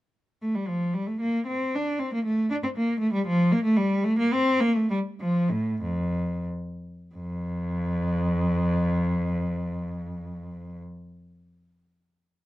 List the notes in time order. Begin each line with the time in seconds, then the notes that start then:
0.42 A3
0.55 G3
0.68 F3
0.94 G3
1.07 A3
1.21 A#3
1.47 C4
1.75 D4
1.99 C4
2.14 A#3
2.25 A3
2.50 D4
2.64 C4
2.77 A#3
3.00 A3
3.13 G3
3.27 F3
3.52 A#3
3.64 A3
3.77 G3
4.04 A3
4.19 A#3
4.33 C4
4.60 A#3
4.75 A3
4.90 G3
5.21 F3
5.51 A2
5.82 F2
7.15 F2